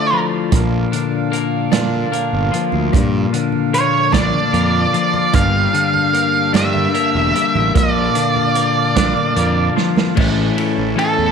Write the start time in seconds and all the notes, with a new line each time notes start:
Already playing: D3 F3 A3 D4 E4 A4 D5
0.12 F3
0.52 A#1 A#2 A#3 F4, kick, closed hi-hat, high conga
0.92 D3, closed hi-hat
1.32 A#3, closed hi-hat
1.72 A#2 D4, snare, closed hi-hat, high conga
2.12 A#3, closed hi-hat, low conga
2.33 G1
2.52 F3, closed hi-hat
2.72 D2, low conga
2.92 G2 A#2, kick, closed hi-hat, high conga
3.33 D3, closed hi-hat
3.52 low conga
3.73 A#3 C#5, closed hi-hat
4.13 A#1 D4 D5, kick, snare, closed hi-hat, high conga
4.34 low conga
4.53 F2 A#3, closed hi-hat, low conga
4.93 F3, closed hi-hat
5.14 low conga
5.34 G1 G2 G4 F5, kick, closed hi-hat, high conga
5.73 D3, closed hi-hat
5.94 low conga
6.13 A#3, closed hi-hat
6.53 G2 D4 E5, snare, closed hi-hat, high conga
6.75 low conga
6.94 A#3, closed hi-hat, low conga
7.15 E1
7.34 G3, closed hi-hat
7.55 A1, low conga
7.75 A#1 A#2 F4 D5, kick, closed hi-hat, high conga
8.15 D3, closed hi-hat
8.36 low conga
8.55 A#3, closed hi-hat
8.96 A#1 D4, kick, snare, closed hi-hat, high conga
9.17 low conga
9.36 F2 A#3, closed hi-hat
9.57 low conga
9.76 F3, snare, low conga
9.97 snare, low conga
10.15 A1 A2 C#3 E3 A3 C#4 E4 A5, kick, crash
10.56 A3 C#4 E4, ride
10.78 A1
10.96 E3 A3 C#4 E4 A4, ride
11.18 E2